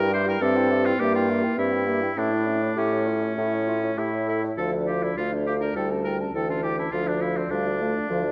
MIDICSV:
0, 0, Header, 1, 6, 480
1, 0, Start_track
1, 0, Key_signature, -1, "minor"
1, 0, Tempo, 580271
1, 1304, Tempo, 599401
1, 1782, Time_signature, 4, 2, 24, 8
1, 4184, Tempo, 582524
1, 6776, End_track
2, 0, Start_track
2, 0, Title_t, "Flute"
2, 0, Program_c, 0, 73
2, 0, Note_on_c, 0, 79, 58
2, 110, Note_on_c, 0, 76, 55
2, 122, Note_off_c, 0, 79, 0
2, 231, Note_on_c, 0, 79, 61
2, 243, Note_off_c, 0, 76, 0
2, 347, Note_off_c, 0, 79, 0
2, 356, Note_on_c, 0, 76, 72
2, 469, Note_on_c, 0, 79, 58
2, 482, Note_off_c, 0, 76, 0
2, 589, Note_on_c, 0, 76, 58
2, 602, Note_off_c, 0, 79, 0
2, 717, Note_on_c, 0, 79, 55
2, 730, Note_off_c, 0, 76, 0
2, 830, Note_off_c, 0, 79, 0
2, 837, Note_on_c, 0, 76, 69
2, 956, Note_on_c, 0, 79, 59
2, 968, Note_off_c, 0, 76, 0
2, 1075, Note_on_c, 0, 76, 50
2, 1088, Note_off_c, 0, 79, 0
2, 1189, Note_on_c, 0, 79, 53
2, 1202, Note_off_c, 0, 76, 0
2, 1303, Note_off_c, 0, 79, 0
2, 1307, Note_on_c, 0, 76, 49
2, 1429, Note_on_c, 0, 79, 52
2, 1441, Note_off_c, 0, 76, 0
2, 1543, Note_on_c, 0, 76, 51
2, 1555, Note_off_c, 0, 79, 0
2, 1663, Note_on_c, 0, 79, 46
2, 1675, Note_off_c, 0, 76, 0
2, 1777, Note_off_c, 0, 79, 0
2, 1782, Note_on_c, 0, 76, 48
2, 1906, Note_on_c, 0, 73, 42
2, 1918, Note_off_c, 0, 76, 0
2, 2020, Note_on_c, 0, 76, 40
2, 2032, Note_off_c, 0, 73, 0
2, 2143, Note_on_c, 0, 73, 44
2, 2155, Note_off_c, 0, 76, 0
2, 2254, Note_off_c, 0, 73, 0
2, 2258, Note_on_c, 0, 76, 51
2, 2382, Note_on_c, 0, 73, 44
2, 2394, Note_off_c, 0, 76, 0
2, 2506, Note_on_c, 0, 76, 42
2, 2518, Note_off_c, 0, 73, 0
2, 2627, Note_on_c, 0, 73, 38
2, 2639, Note_off_c, 0, 76, 0
2, 2741, Note_off_c, 0, 73, 0
2, 2746, Note_on_c, 0, 76, 46
2, 2879, Note_on_c, 0, 73, 42
2, 2891, Note_off_c, 0, 76, 0
2, 2997, Note_on_c, 0, 76, 39
2, 3009, Note_off_c, 0, 73, 0
2, 3117, Note_on_c, 0, 73, 37
2, 3129, Note_off_c, 0, 76, 0
2, 3232, Note_off_c, 0, 73, 0
2, 3237, Note_on_c, 0, 76, 35
2, 3357, Note_on_c, 0, 73, 39
2, 3369, Note_off_c, 0, 76, 0
2, 3481, Note_on_c, 0, 76, 44
2, 3493, Note_off_c, 0, 73, 0
2, 3603, Note_on_c, 0, 73, 38
2, 3615, Note_off_c, 0, 76, 0
2, 3710, Note_off_c, 0, 73, 0
2, 3715, Note_on_c, 0, 77, 47
2, 3842, Note_on_c, 0, 74, 43
2, 3854, Note_off_c, 0, 77, 0
2, 3957, Note_on_c, 0, 77, 42
2, 3969, Note_off_c, 0, 74, 0
2, 4075, Note_on_c, 0, 74, 43
2, 4087, Note_off_c, 0, 77, 0
2, 4190, Note_off_c, 0, 74, 0
2, 4194, Note_on_c, 0, 77, 49
2, 4321, Note_on_c, 0, 74, 41
2, 4333, Note_off_c, 0, 77, 0
2, 4437, Note_on_c, 0, 77, 45
2, 4449, Note_off_c, 0, 74, 0
2, 4558, Note_on_c, 0, 74, 39
2, 4570, Note_off_c, 0, 77, 0
2, 4665, Note_off_c, 0, 74, 0
2, 4670, Note_on_c, 0, 79, 51
2, 4795, Note_on_c, 0, 81, 44
2, 4808, Note_off_c, 0, 79, 0
2, 4922, Note_on_c, 0, 79, 41
2, 4934, Note_off_c, 0, 81, 0
2, 5038, Note_on_c, 0, 81, 43
2, 5051, Note_off_c, 0, 79, 0
2, 5154, Note_off_c, 0, 81, 0
2, 5159, Note_on_c, 0, 79, 42
2, 5275, Note_on_c, 0, 81, 46
2, 5288, Note_off_c, 0, 79, 0
2, 5401, Note_on_c, 0, 79, 42
2, 5413, Note_off_c, 0, 81, 0
2, 5520, Note_on_c, 0, 81, 43
2, 5532, Note_off_c, 0, 79, 0
2, 5627, Note_off_c, 0, 81, 0
2, 5632, Note_on_c, 0, 77, 46
2, 5754, Note_on_c, 0, 74, 43
2, 5767, Note_off_c, 0, 77, 0
2, 5877, Note_on_c, 0, 77, 45
2, 5889, Note_off_c, 0, 74, 0
2, 6000, Note_on_c, 0, 74, 50
2, 6013, Note_off_c, 0, 77, 0
2, 6113, Note_off_c, 0, 74, 0
2, 6123, Note_on_c, 0, 77, 53
2, 6242, Note_on_c, 0, 74, 48
2, 6254, Note_off_c, 0, 77, 0
2, 6365, Note_on_c, 0, 77, 45
2, 6377, Note_off_c, 0, 74, 0
2, 6494, Note_on_c, 0, 74, 41
2, 6506, Note_off_c, 0, 77, 0
2, 6600, Note_off_c, 0, 74, 0
2, 6607, Note_on_c, 0, 77, 54
2, 6723, Note_on_c, 0, 74, 49
2, 6735, Note_off_c, 0, 77, 0
2, 6776, Note_off_c, 0, 74, 0
2, 6776, End_track
3, 0, Start_track
3, 0, Title_t, "Oboe"
3, 0, Program_c, 1, 68
3, 0, Note_on_c, 1, 70, 107
3, 88, Note_off_c, 1, 70, 0
3, 112, Note_on_c, 1, 72, 97
3, 225, Note_off_c, 1, 72, 0
3, 235, Note_on_c, 1, 70, 96
3, 344, Note_on_c, 1, 69, 105
3, 356, Note_off_c, 1, 70, 0
3, 705, Note_on_c, 1, 65, 96
3, 718, Note_off_c, 1, 69, 0
3, 825, Note_on_c, 1, 67, 98
3, 837, Note_off_c, 1, 65, 0
3, 944, Note_off_c, 1, 67, 0
3, 949, Note_on_c, 1, 65, 76
3, 1300, Note_off_c, 1, 65, 0
3, 1313, Note_on_c, 1, 64, 81
3, 1788, Note_on_c, 1, 62, 82
3, 1800, Note_off_c, 1, 64, 0
3, 2265, Note_on_c, 1, 61, 73
3, 2277, Note_off_c, 1, 62, 0
3, 3233, Note_on_c, 1, 64, 59
3, 3245, Note_off_c, 1, 61, 0
3, 3471, Note_off_c, 1, 64, 0
3, 3476, Note_on_c, 1, 64, 66
3, 3583, Note_off_c, 1, 64, 0
3, 3706, Note_on_c, 1, 69, 76
3, 3815, Note_off_c, 1, 69, 0
3, 3942, Note_on_c, 1, 67, 63
3, 4067, Note_on_c, 1, 64, 66
3, 4079, Note_off_c, 1, 67, 0
3, 4179, Note_off_c, 1, 64, 0
3, 4184, Note_on_c, 1, 65, 81
3, 4293, Note_off_c, 1, 65, 0
3, 4428, Note_on_c, 1, 67, 71
3, 4482, Note_off_c, 1, 67, 0
3, 4544, Note_on_c, 1, 70, 74
3, 4663, Note_off_c, 1, 70, 0
3, 4667, Note_on_c, 1, 69, 62
3, 4775, Note_off_c, 1, 69, 0
3, 4904, Note_on_c, 1, 70, 63
3, 5013, Note_off_c, 1, 70, 0
3, 5155, Note_on_c, 1, 69, 75
3, 5270, Note_off_c, 1, 69, 0
3, 5278, Note_on_c, 1, 65, 58
3, 5380, Note_off_c, 1, 65, 0
3, 5385, Note_on_c, 1, 67, 76
3, 5504, Note_off_c, 1, 67, 0
3, 5514, Note_on_c, 1, 64, 69
3, 5624, Note_on_c, 1, 65, 81
3, 5636, Note_off_c, 1, 64, 0
3, 5754, Note_on_c, 1, 62, 67
3, 5766, Note_off_c, 1, 65, 0
3, 5866, Note_on_c, 1, 64, 71
3, 5878, Note_off_c, 1, 62, 0
3, 5994, Note_on_c, 1, 60, 70
3, 6006, Note_off_c, 1, 64, 0
3, 6103, Note_on_c, 1, 62, 89
3, 6116, Note_off_c, 1, 60, 0
3, 6776, Note_off_c, 1, 62, 0
3, 6776, End_track
4, 0, Start_track
4, 0, Title_t, "Clarinet"
4, 0, Program_c, 2, 71
4, 0, Note_on_c, 2, 64, 60
4, 96, Note_on_c, 2, 67, 59
4, 108, Note_off_c, 2, 64, 0
4, 222, Note_on_c, 2, 64, 58
4, 235, Note_off_c, 2, 67, 0
4, 338, Note_off_c, 2, 64, 0
4, 343, Note_on_c, 2, 67, 63
4, 461, Note_on_c, 2, 64, 61
4, 473, Note_off_c, 2, 67, 0
4, 580, Note_on_c, 2, 67, 53
4, 592, Note_off_c, 2, 64, 0
4, 702, Note_on_c, 2, 64, 62
4, 714, Note_off_c, 2, 67, 0
4, 817, Note_off_c, 2, 64, 0
4, 821, Note_on_c, 2, 67, 65
4, 939, Note_on_c, 2, 64, 62
4, 952, Note_off_c, 2, 67, 0
4, 1063, Note_on_c, 2, 67, 54
4, 1075, Note_off_c, 2, 64, 0
4, 1179, Note_on_c, 2, 64, 52
4, 1191, Note_off_c, 2, 67, 0
4, 1293, Note_off_c, 2, 64, 0
4, 1298, Note_on_c, 2, 67, 46
4, 1419, Note_on_c, 2, 64, 48
4, 1431, Note_off_c, 2, 67, 0
4, 1532, Note_on_c, 2, 67, 52
4, 1544, Note_off_c, 2, 64, 0
4, 1655, Note_on_c, 2, 64, 48
4, 1667, Note_off_c, 2, 67, 0
4, 1763, Note_off_c, 2, 64, 0
4, 1768, Note_on_c, 2, 61, 48
4, 1893, Note_on_c, 2, 64, 47
4, 1905, Note_off_c, 2, 61, 0
4, 2015, Note_on_c, 2, 61, 42
4, 2027, Note_off_c, 2, 64, 0
4, 2132, Note_on_c, 2, 64, 47
4, 2144, Note_off_c, 2, 61, 0
4, 2249, Note_off_c, 2, 64, 0
4, 2254, Note_on_c, 2, 67, 70
4, 2500, Note_on_c, 2, 65, 49
4, 2512, Note_off_c, 2, 67, 0
4, 2734, Note_off_c, 2, 65, 0
4, 2739, Note_on_c, 2, 64, 52
4, 2849, Note_off_c, 2, 64, 0
4, 2980, Note_on_c, 2, 65, 55
4, 3090, Note_off_c, 2, 65, 0
4, 3224, Note_on_c, 2, 67, 55
4, 3333, Note_off_c, 2, 67, 0
4, 3462, Note_on_c, 2, 69, 55
4, 3572, Note_off_c, 2, 69, 0
4, 3707, Note_on_c, 2, 65, 44
4, 3826, Note_on_c, 2, 62, 50
4, 3838, Note_off_c, 2, 65, 0
4, 3951, Note_on_c, 2, 65, 44
4, 3963, Note_off_c, 2, 62, 0
4, 4071, Note_on_c, 2, 62, 44
4, 4083, Note_off_c, 2, 65, 0
4, 4177, Note_off_c, 2, 62, 0
4, 4182, Note_on_c, 2, 65, 50
4, 4308, Note_on_c, 2, 62, 43
4, 4320, Note_off_c, 2, 65, 0
4, 4425, Note_on_c, 2, 65, 45
4, 4438, Note_off_c, 2, 62, 0
4, 4543, Note_on_c, 2, 62, 47
4, 4555, Note_off_c, 2, 65, 0
4, 4665, Note_off_c, 2, 62, 0
4, 4670, Note_on_c, 2, 64, 49
4, 4783, Note_on_c, 2, 61, 45
4, 4795, Note_off_c, 2, 64, 0
4, 4905, Note_on_c, 2, 64, 43
4, 4918, Note_off_c, 2, 61, 0
4, 5027, Note_on_c, 2, 61, 48
4, 5039, Note_off_c, 2, 64, 0
4, 5140, Note_off_c, 2, 61, 0
4, 5145, Note_on_c, 2, 64, 44
4, 5261, Note_on_c, 2, 61, 43
4, 5273, Note_off_c, 2, 64, 0
4, 5388, Note_on_c, 2, 64, 40
4, 5400, Note_off_c, 2, 61, 0
4, 5500, Note_on_c, 2, 61, 41
4, 5513, Note_off_c, 2, 64, 0
4, 5611, Note_off_c, 2, 61, 0
4, 5616, Note_on_c, 2, 65, 47
4, 5746, Note_on_c, 2, 62, 49
4, 5758, Note_off_c, 2, 65, 0
4, 5858, Note_on_c, 2, 65, 48
4, 5870, Note_off_c, 2, 62, 0
4, 5983, Note_on_c, 2, 62, 48
4, 5995, Note_off_c, 2, 65, 0
4, 6089, Note_off_c, 2, 62, 0
4, 6094, Note_on_c, 2, 65, 53
4, 6228, Note_on_c, 2, 62, 49
4, 6240, Note_off_c, 2, 65, 0
4, 6351, Note_on_c, 2, 65, 44
4, 6363, Note_off_c, 2, 62, 0
4, 6468, Note_on_c, 2, 62, 45
4, 6481, Note_off_c, 2, 65, 0
4, 6587, Note_off_c, 2, 62, 0
4, 6595, Note_on_c, 2, 65, 51
4, 6711, Note_on_c, 2, 62, 52
4, 6723, Note_off_c, 2, 65, 0
4, 6776, Note_off_c, 2, 62, 0
4, 6776, End_track
5, 0, Start_track
5, 0, Title_t, "French horn"
5, 0, Program_c, 3, 60
5, 0, Note_on_c, 3, 55, 77
5, 336, Note_off_c, 3, 55, 0
5, 340, Note_on_c, 3, 60, 91
5, 822, Note_on_c, 3, 58, 78
5, 835, Note_off_c, 3, 60, 0
5, 1307, Note_on_c, 3, 60, 66
5, 1319, Note_off_c, 3, 58, 0
5, 1535, Note_off_c, 3, 60, 0
5, 1540, Note_on_c, 3, 58, 58
5, 1648, Note_off_c, 3, 58, 0
5, 1786, Note_on_c, 3, 57, 65
5, 3439, Note_off_c, 3, 57, 0
5, 3706, Note_on_c, 3, 53, 59
5, 4184, Note_on_c, 3, 57, 60
5, 4196, Note_off_c, 3, 53, 0
5, 4664, Note_on_c, 3, 55, 76
5, 4676, Note_off_c, 3, 57, 0
5, 5140, Note_off_c, 3, 55, 0
5, 5145, Note_on_c, 3, 52, 50
5, 5617, Note_off_c, 3, 52, 0
5, 5636, Note_on_c, 3, 53, 59
5, 6101, Note_off_c, 3, 53, 0
5, 6110, Note_on_c, 3, 55, 58
5, 6344, Note_off_c, 3, 55, 0
5, 6360, Note_on_c, 3, 57, 63
5, 6589, Note_off_c, 3, 57, 0
5, 6594, Note_on_c, 3, 53, 72
5, 6700, Note_off_c, 3, 53, 0
5, 6776, End_track
6, 0, Start_track
6, 0, Title_t, "Bassoon"
6, 0, Program_c, 4, 70
6, 0, Note_on_c, 4, 43, 77
6, 288, Note_off_c, 4, 43, 0
6, 343, Note_on_c, 4, 43, 82
6, 767, Note_off_c, 4, 43, 0
6, 824, Note_on_c, 4, 43, 82
6, 1180, Note_off_c, 4, 43, 0
6, 1307, Note_on_c, 4, 43, 66
6, 1726, Note_off_c, 4, 43, 0
6, 1784, Note_on_c, 4, 45, 62
6, 2209, Note_off_c, 4, 45, 0
6, 2262, Note_on_c, 4, 45, 60
6, 2686, Note_off_c, 4, 45, 0
6, 2747, Note_on_c, 4, 45, 62
6, 3172, Note_off_c, 4, 45, 0
6, 3227, Note_on_c, 4, 45, 52
6, 3653, Note_off_c, 4, 45, 0
6, 3705, Note_on_c, 4, 38, 68
6, 4128, Note_off_c, 4, 38, 0
6, 4188, Note_on_c, 4, 38, 57
6, 4612, Note_off_c, 4, 38, 0
6, 4666, Note_on_c, 4, 38, 61
6, 5090, Note_off_c, 4, 38, 0
6, 5154, Note_on_c, 4, 38, 58
6, 5575, Note_off_c, 4, 38, 0
6, 5632, Note_on_c, 4, 38, 64
6, 6052, Note_off_c, 4, 38, 0
6, 6106, Note_on_c, 4, 38, 62
6, 6465, Note_off_c, 4, 38, 0
6, 6592, Note_on_c, 4, 38, 69
6, 6776, Note_off_c, 4, 38, 0
6, 6776, End_track
0, 0, End_of_file